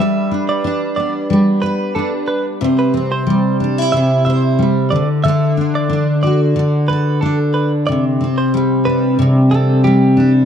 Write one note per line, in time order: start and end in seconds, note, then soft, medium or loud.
0.00 1.30 G3 medium
0.00 0.31 D4 medium
0.00 1.62 B4 medium
0.00 0.29 E5 medium
0.31 0.63 D4 soft
0.49 0.80 D5 medium
0.64 1.95 D4 medium
0.96 2.68 B3 soft
0.96 1.14 D5 medium
1.30 3.26 G3 medium
1.62 1.93 B4 medium
1.62 2.61 B4 medium
1.95 2.68 D4 medium
1.95 2.12 A4 medium
2.28 2.45 B4 medium
2.61 3.92 C3 medium
2.61 4.25 C5 soft
2.79 2.93 B4 medium
2.94 4.98 C4 medium
3.12 3.57 C5 medium
3.27 4.57 G3 medium
3.60 3.78 D4 medium
3.78 4.99 E4 soft
3.92 4.99 C3 medium
3.92 4.24 E5 medium
4.25 4.99 C5 medium
4.25 4.42 E5 medium
4.59 4.91 G3 medium
4.90 5.24 D3 medium
4.90 5.08 D5 medium
5.24 6.55 D3 medium
5.24 6.88 A4 medium
5.24 5.55 E5 loud
5.57 5.89 D4 soft
5.75 6.06 D5 medium
5.89 7.22 D4 medium
6.23 7.95 F#4 medium
6.23 6.40 D5 medium
6.56 8.24 D3 medium
6.88 7.95 A4 medium
6.88 7.20 B4 medium
7.21 8.20 D4 medium
7.21 7.38 A4 medium
7.54 7.71 B4 medium
7.87 9.17 C3 medium
7.87 8.04 D5 loud
8.21 9.51 C4 medium
8.38 8.52 C5 medium
8.54 9.83 G3 medium
8.85 10.16 D4 medium
8.85 9.17 B4 medium
9.19 10.45 C3 medium
9.51 10.45 C4 medium
9.51 9.83 A4 medium
9.84 10.45 G3 medium
9.84 10.32 G4 medium
10.17 10.45 D4 medium